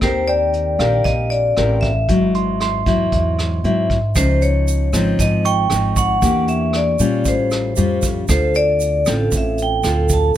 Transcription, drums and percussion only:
0.01 kick, cross-stick, closed hi-hat
0.27 closed hi-hat
0.53 closed hi-hat
0.79 cross-stick, closed hi-hat
1.05 kick, closed hi-hat
1.31 closed hi-hat
1.57 cross-stick, closed hi-hat
1.82 kick, closed hi-hat
2.09 kick, closed hi-hat
2.34 closed hi-hat
2.60 cross-stick, closed hi-hat
2.86 kick, closed hi-hat
3.12 kick, closed hi-hat
3.39 cross-stick, closed hi-hat
3.64 closed hi-hat
3.90 kick, closed hi-hat
4.15 kick, cross-stick, closed hi-hat, shaker
4.42 closed hi-hat, shaker
4.67 closed hi-hat, shaker
4.93 cross-stick, closed hi-hat, shaker
5.19 kick, closed hi-hat, shaker
5.44 closed hi-hat, shaker
5.70 cross-stick, closed hi-hat, shaker
5.96 kick, closed hi-hat, shaker
6.22 kick, closed hi-hat, shaker
6.47 closed hi-hat, shaker
6.73 cross-stick, closed hi-hat
6.99 closed hi-hat, shaker
7.25 kick, closed hi-hat, shaker
7.50 cross-stick, closed hi-hat, shaker
7.76 closed hi-hat, shaker
8.02 kick, closed hi-hat, shaker
8.28 kick, cross-stick, closed hi-hat, shaker
8.54 closed hi-hat, shaker
8.80 closed hi-hat, shaker
9.06 cross-stick, closed hi-hat, shaker
9.32 kick, closed hi-hat, shaker
9.58 closed hi-hat, shaker
9.83 cross-stick, closed hi-hat, shaker
10.09 kick, closed hi-hat, shaker

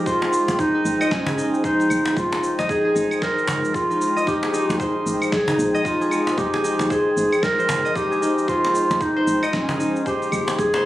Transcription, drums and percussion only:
0.06 kick, cabasa
0.22 cajon slap
0.33 cabasa
0.48 cajon slap, cabasa
0.59 kick, cabasa
0.85 cabasa
1.01 cabasa, claves
1.11 kick, snare, cabasa
1.27 cajon bass, cabasa
1.38 cabasa
1.54 cabasa
1.64 kick, cabasa
1.80 cajon slap, cabasa
1.90 cabasa, claves
2.05 cajon slap, cabasa
2.17 kick, cabasa
2.32 cajon slap
2.43 cabasa
2.59 cajon slap, cabasa
2.69 kick, cabasa
2.96 cabasa
3.11 cabasa, claves
3.22 kick, snare, cabasa
3.38 cabasa
3.47 cajon bass, cajon slap, cabasa
3.65 cabasa
3.74 kick, cabasa
3.91 cabasa
4.01 cabasa
4.17 cabasa
4.27 kick, cabasa
4.43 cajon slap
4.54 cabasa
4.70 cajon slap, cabasa
4.80 kick, cabasa
5.07 cabasa
5.22 cabasa, claves
5.32 kick, snare, cabasa
5.48 cajon bass, cabasa
5.59 cabasa
5.75 cabasa
5.85 kick, cabasa
6.01 cajon slap, cabasa
6.11 cabasa, claves
6.27 cajon slap, cabasa
6.38 kick, cabasa
6.54 cajon slap
6.64 cabasa
6.79 cajon slap, cabasa
6.90 kick, cabasa
7.17 cabasa
7.33 cabasa, claves
7.43 kick, snare, cabasa
7.59 cabasa
7.69 cajon bass, cajon slap, cabasa
7.85 cabasa
7.95 kick, cabasa
8.12 cabasa
8.22 cabasa
8.38 cabasa
8.48 kick, cabasa
8.65 cajon slap
8.75 cabasa
8.91 cajon slap, cabasa
9.01 kick, cabasa
9.27 cabasa
9.43 cabasa, claves
9.53 kick, snare, cabasa
9.69 cajon bass, cabasa
9.80 cabasa
9.96 cabasa
10.06 kick, cabasa
10.22 cajon slap, cabasa
10.32 cabasa, claves
10.48 cajon slap, cabasa
10.59 kick, cabasa
10.74 cajon slap

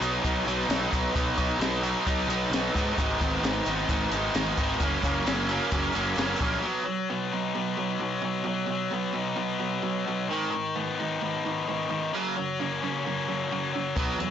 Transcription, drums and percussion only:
0.02 closed hi-hat, shaker
0.25 kick, closed hi-hat, shaker
0.48 closed hi-hat, shaker
0.70 snare, closed hi-hat, tambourine, shaker
0.93 kick, closed hi-hat, shaker
1.16 kick, closed hi-hat, shaker
1.38 kick, closed hi-hat, shaker
1.61 snare, closed hi-hat, tambourine, shaker
1.84 closed hi-hat, shaker
2.07 kick, closed hi-hat, shaker
2.30 closed hi-hat, shaker
2.53 snare, closed hi-hat, tambourine, shaker
2.75 kick, closed hi-hat, shaker
2.98 kick, closed hi-hat, shaker
3.21 kick, closed hi-hat, shaker
3.44 snare, closed hi-hat, tambourine, shaker
3.66 closed hi-hat, shaker
3.89 kick, closed hi-hat, shaker
4.12 closed hi-hat, shaker
4.33 snare, closed hi-hat, tambourine, shaker
4.57 kick, closed hi-hat, shaker
4.80 kick, closed hi-hat, shaker
5.04 kick, closed hi-hat, shaker
5.14 shaker
5.27 snare, closed hi-hat, tambourine, shaker
5.49 closed hi-hat
5.59 shaker
5.71 kick, closed hi-hat, shaker
5.92 closed hi-hat, shaker
6.04 shaker
6.15 closed hi-hat, tambourine, shaker
6.19 snare
6.36 shaker
6.41 kick, closed hi-hat
6.48 shaker
13.97 kick, closed hi-hat
14.20 closed hi-hat

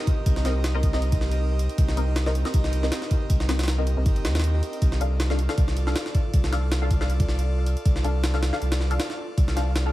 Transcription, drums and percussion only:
0.07 kick, closed hi-hat
0.26 kick, closed hi-hat
0.36 snare
0.45 snare, closed hi-hat
0.64 snare, closed hi-hat
0.83 kick, closed hi-hat
0.93 snare
1.02 closed hi-hat
1.12 kick, closed hi-hat
1.21 snare
1.31 closed hi-hat
1.59 closed hi-hat
1.69 closed hi-hat
1.78 kick, closed hi-hat
1.88 snare
1.97 closed hi-hat
2.16 snare, closed hi-hat
2.26 snare
2.35 closed hi-hat
2.45 snare
2.54 kick, closed hi-hat
2.64 snare
2.73 closed hi-hat
2.83 snare
2.92 snare, closed hi-hat
3.02 snare
3.11 kick, closed hi-hat
3.30 kick, closed hi-hat
3.40 snare
3.49 snare, closed hi-hat
3.59 snare, closed hi-hat
3.63 snare, closed hi-hat
3.68 snare, closed hi-hat
3.87 closed hi-hat
4.06 kick, closed hi-hat
4.16 closed hi-hat
4.25 snare, closed hi-hat
4.35 snare, closed hi-hat
4.39 snare, closed hi-hat
4.44 closed hi-hat
4.63 closed hi-hat
4.73 closed hi-hat
4.82 kick, closed hi-hat
4.92 snare
5.01 closed hi-hat
5.20 snare, closed hi-hat
5.30 snare
5.39 closed hi-hat
5.49 snare
5.58 kick, closed hi-hat
5.68 snare
5.77 closed hi-hat
5.87 snare
5.96 snare, closed hi-hat
6.06 snare
6.15 kick, closed hi-hat
6.34 kick, closed hi-hat
6.44 snare
6.53 snare, closed hi-hat
6.72 snare, closed hi-hat
6.91 kick, closed hi-hat
7.01 snare
7.10 closed hi-hat
7.20 kick, closed hi-hat
7.29 snare
7.39 closed hi-hat
7.66 closed hi-hat
7.77 closed hi-hat
7.86 kick, closed hi-hat
7.96 snare
8.05 closed hi-hat
8.24 snare, closed hi-hat
8.34 snare
8.43 snare, closed hi-hat
8.53 snare
8.62 closed hi-hat
8.72 snare, closed hi-hat
8.81 snare
8.91 closed hi-hat
9.00 snare, closed hi-hat
9.10 snare
9.38 kick, closed hi-hat
9.48 snare
9.57 snare, closed hi-hat
9.76 snare, closed hi-hat

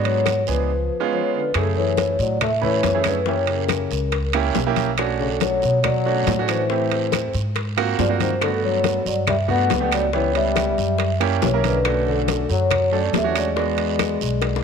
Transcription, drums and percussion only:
0.04 high bongo, high conga, high timbale
0.26 high bongo, high conga, high timbale, low timbale, short guiro, claves
0.47 high conga, short guiro
1.54 high bongo, high conga, high timbale, long guiro, claves
1.76 high bongo, high conga
1.97 high bongo, high conga, high timbale, low timbale, short guiro
2.19 high bongo, high conga, short guiro
2.41 high bongo, high conga, low conga, high timbale, long guiro, claves
2.63 high conga, low conga
2.83 high bongo, low bongo, high conga, high timbale, low timbale, short guiro
3.04 high bongo, high conga, high timbale, short guiro, claves
3.26 high bongo, high conga, long guiro
3.47 high bongo, high conga, high timbale
3.68 high bongo, high conga, high timbale, low timbale, short guiro, claves
3.91 high conga, short guiro
4.12 high bongo, high conga, high timbale, long guiro
4.33 high bongo, high conga, high timbale, claves
4.55 high bongo, low bongo, high conga, low timbale, short guiro
4.76 high bongo, high conga, high timbale, short guiro
4.97 high bongo, high conga, high timbale, long guiro, claves
5.20 high bongo, high conga
5.40 high bongo, high conga, high timbale, low timbale, short guiro
5.62 high bongo, high conga, short guiro
5.84 high bongo, high conga, low conga, high timbale, long guiro, claves
6.06 high conga
6.27 high bongo, low bongo, high conga, high timbale, low timbale, short guiro
6.48 high bongo, high timbale, short guiro, claves
6.70 high bongo, high conga, long guiro
6.92 high bongo, high conga, high timbale
7.12 high bongo, high conga, high timbale, low timbale, short guiro, claves
7.33 high conga, short guiro
7.55 high bongo, high conga, high timbale, long guiro
7.77 high bongo, high conga, high timbale, claves
7.99 high bongo, low bongo, high conga, low timbale, short guiro
8.20 high bongo, high conga, high timbale, short guiro
8.41 high bongo, high conga, high timbale, long guiro, claves
8.63 high bongo, high conga
8.84 high bongo, high conga, high timbale, low timbale, short guiro
9.06 high bongo, high conga, short guiro
9.27 high bongo, high conga, low conga, high timbale, long guiro, claves
9.48 high conga, low conga
9.70 high bongo, low bongo, high conga, high timbale, low timbale, short guiro
9.92 high bongo, high timbale, short guiro, claves
10.13 high bongo, high conga, long guiro
10.35 high bongo, high conga, high timbale
10.56 high bongo, high conga, high timbale, low timbale, short guiro, claves
10.78 high conga, short guiro
10.98 high bongo, high conga, high timbale, long guiro
11.20 high bongo, high conga, high timbale, claves
11.42 high bongo, low bongo, high conga, low timbale, short guiro
11.64 high bongo, high conga, high timbale, short guiro
11.85 high bongo, high conga, high timbale, long guiro, claves
12.07 high bongo, high conga
12.28 high bongo, high conga, high timbale, low timbale, short guiro
12.49 high bongo, high conga, short guiro
12.71 high bongo, high conga, low conga, high timbale, long guiro, claves
12.92 high conga
13.13 high bongo, low bongo, high conga, high timbale, low timbale, short guiro
13.36 high bongo, high timbale, short guiro, claves
13.56 high bongo, high conga, long guiro
13.77 high bongo, high conga, high timbale
13.99 high bongo, high conga, high timbale, low timbale, short guiro, claves
14.20 high conga, short guiro
14.42 high bongo, high conga, high timbale, long guiro
14.56 high bongo

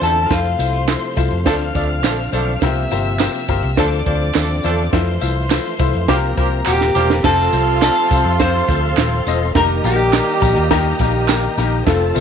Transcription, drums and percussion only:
0.01 snare, closed hi-hat, tambourine
0.31 kick, snare, closed hi-hat, tambourine
0.60 closed hi-hat, tambourine
0.73 closed hi-hat
0.88 snare, clap, closed hi-hat, tambourine
1.16 kick, closed hi-hat, tambourine
1.31 closed hi-hat
1.46 kick, snare, closed hi-hat, tambourine
1.75 kick, closed hi-hat, tambourine
2.04 snare, clap, closed hi-hat, tambourine
2.33 closed hi-hat, tambourine
2.62 kick, snare, closed hi-hat, tambourine
2.91 closed hi-hat, tambourine
3.19 snare, clap, closed hi-hat, tambourine
3.48 kick, closed hi-hat, tambourine
3.63 closed hi-hat
3.77 kick, snare, closed hi-hat, tambourine
4.06 kick, closed hi-hat
4.35 snare, clap, closed hi-hat, tambourine
4.63 snare, closed hi-hat, tambourine
4.93 kick, snare, closed hi-hat
5.21 closed hi-hat, tambourine
5.50 snare, clap, closed hi-hat, tambourine
5.79 kick, closed hi-hat, tambourine
5.94 closed hi-hat
6.08 kick, snare, closed hi-hat, tambourine
6.38 kick, closed hi-hat
6.66 clap, tambourine
6.81 snare
6.95 tambourine
7.10 snare
7.24 kick, snare, crash, tambourine
7.53 closed hi-hat, tambourine
7.67 closed hi-hat
7.82 snare, clap, closed hi-hat, tambourine
8.10 kick, closed hi-hat, tambourine
8.25 closed hi-hat
8.40 kick, snare, closed hi-hat, tambourine
8.68 kick, closed hi-hat, tambourine
8.97 snare, clap, closed hi-hat, tambourine
9.27 snare, closed hi-hat, tambourine
9.55 kick, snare, closed hi-hat, tambourine
9.84 closed hi-hat, tambourine
9.98 closed hi-hat
10.13 snare, clap, closed hi-hat, tambourine
10.42 kick, closed hi-hat, tambourine
10.56 closed hi-hat
10.71 kick, snare, closed hi-hat, tambourine
10.99 kick, closed hi-hat, tambourine
11.28 snare, clap, closed hi-hat, tambourine
11.58 snare, closed hi-hat, tambourine
11.87 kick, snare, closed hi-hat, tambourine
12.16 closed hi-hat, tambourine

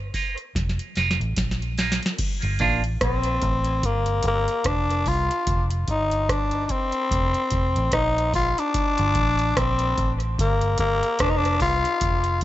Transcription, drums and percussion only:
0.14 kick, open hi-hat
0.38 closed hi-hat
0.55 kick, snare, closed hi-hat
0.69 snare
0.79 closed hi-hat
0.96 snare, open hi-hat
1.11 snare
1.21 closed hi-hat
1.37 kick, snare, closed hi-hat
1.51 snare
1.62 closed hi-hat
1.78 snare, open hi-hat
1.92 snare
2.03 snare, closed hi-hat
2.18 kick, closed hi-hat, crash
2.42 closed hi-hat
2.59 kick, closed hi-hat
2.84 closed hi-hat
3.01 kick, cross-stick, closed hi-hat
3.23 closed hi-hat
3.42 kick, closed hi-hat
3.64 closed hi-hat
3.83 kick, closed hi-hat
4.06 closed hi-hat
4.23 kick, closed hi-hat
4.48 closed hi-hat
4.64 kick, cross-stick, closed hi-hat
4.90 closed hi-hat
5.06 kick, open hi-hat
5.31 closed hi-hat
5.47 kick, closed hi-hat
5.71 closed hi-hat
5.88 kick, closed hi-hat
6.11 closed hi-hat
6.29 kick, cross-stick, closed hi-hat
6.51 closed hi-hat
6.69 kick, closed hi-hat
6.92 closed hi-hat
7.11 kick, closed hi-hat
7.34 closed hi-hat
7.51 kick, closed hi-hat
7.76 closed hi-hat
7.92 kick, cross-stick, closed hi-hat
8.18 closed hi-hat
8.34 kick, open hi-hat
8.58 closed hi-hat
8.74 kick, closed hi-hat
8.98 closed hi-hat
9.15 kick, closed hi-hat
9.39 closed hi-hat
9.57 kick, cross-stick, closed hi-hat
9.79 closed hi-hat
9.98 kick, closed hi-hat
10.20 closed hi-hat
10.39 kick, closed hi-hat
10.61 closed hi-hat
10.78 kick, closed hi-hat
11.03 closed hi-hat
11.19 kick, cross-stick, closed hi-hat
11.45 closed hi-hat
11.60 kick, open hi-hat
11.85 closed hi-hat
12.01 kick, closed hi-hat
12.24 closed hi-hat
12.41 closed hi-hat

